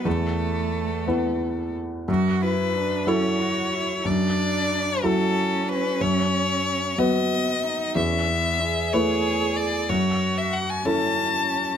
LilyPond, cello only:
\new Staff \with { instrumentName = "Cello" } { \time 6/8 \key fis \minor \tempo 4. = 61 a2~ a8 r8 | fis'8 e'8 d'8 cis'8 fis'8 e'8 | d'4. cis'4.~ | cis'4. b8 b8 dis'8 |
cis'8 b8 gis'2 | fis'4. cis'4. | }